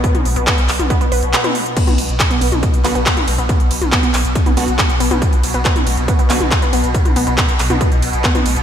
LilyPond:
<<
  \new Staff \with { instrumentName = "Synth arpeggio sound" } { \time 4/4 \key fis \phrygian \tempo 4 = 139 r8. b16 b16 r8. b16 b16 b'16 r16 b16 b16 r8 | b16 b16 r8. b16 b16 r8. b16 b16 r8. b16 | b16 r8. b16 b16 r8. b16 b16 r8. b16 b16 | r8. b16 b16 r8. b16 b16 r8. b16 b16 r16 |
r8 b16 b16 r8. b16 b16 r8. b16 b16 r8 | }
  \new Staff \with { instrumentName = "Synth stab" } { \time 4/4 \key fis \phrygian r1 | r2 r8 <d b fis'>8 r4 | r2 r8 <d b fis'>8 r4 | r2 r8 <d b fis'>8 r4 |
r1 | }
  \new Staff \with { instrumentName = "Synth drone" } { \clef bass \time 4/4 \key fis \phrygian b,1 | b,1~ | b,1~ | b,1~ |
b,1 | }
  \new Staff \with { instrumentName = "Sub bass" } { \clef bass \time 4/4 \key fis \phrygian r16 b,,16 b,,16 b,,16 r16 b,,16 b,,16 b,,16 r16 b,,16 b,,16 b,,16 r4 | r16 b,,16 b,,16 b,,16 r16 b,,16 b,,16 b,,16 r16 b,,16 b,,16 b,,16 r16 b,,16 b,,16 b,,16 | r16 b,,16 b,,16 b,,16 r16 b,,16 b,,16 b,,16 r16 b,,16 b,,16 b,,16 r16 b,,16 b,,16 b,,16 | r16 b,,16 b,,16 b,,16 r16 b,,16 b,,16 b,,16 r16 b,,16 b,,16 b,,16 r16 b,,16 b,,16 b,,16 |
r16 b,,16 b,,16 b,,16 r16 b,,16 b,,16 b,,16 r16 b,,16 b,,16 b,,16 r16 b,,16 b,,16 b,,16 | }
  \new DrumStaff \with { instrumentName = "Drums" } \drummode { \time 4/4 <hh bd>16 <hh toml>16 hho16 hh16 <hc hh bd>16 hh16 <hc hho>16 <hh toml>16 <hh bd>16 hh16 hho16 hh16 <hc hh>16 <hh toml>16 hho16 hh16 | <cymc hh bd cymr>16 <hh toml>16 <hho cymr>16 hh16 <hc hh bd cymr>16 hh16 <hho cymr>16 <hh toml>16 <hh bd cymr>16 hh16 <hc hho cymr>16 hh16 <hc hh bd cymr>16 <hh toml>16 <hho cymr>16 hh16 | <hh bd cymr>16 hh16 <hho cymr>16 <hh toml>16 <hc hh bd cymr>16 hh16 <hc hho cymr>16 hh16 <hh bd cymr>16 <hh toml>16 <hho cymr>16 hh16 <hc hh bd cymr>16 hh16 <hho cymr>16 <hh toml>16 | <hh bd cymr>16 hh16 <hho cymr>16 hh16 <hc hh bd cymr>16 <hh toml>16 <hho cymr>16 hh16 <hh bd cymr>16 hh16 <hc hho cymr>16 <hh toml>16 <hc hh bd cymr>16 hh16 <hho cymr>16 hh16 |
<hh bd cymr>16 <hh toml>16 <hho cymr>16 hh16 <hc hh bd cymr>16 hh16 <hc hho cymr>16 <hh toml>16 <hh bd cymr>16 hh16 <hho cymr>16 hh16 <hc hh bd cymr>16 <hh toml>16 <hho cymr>16 hh16 | }
>>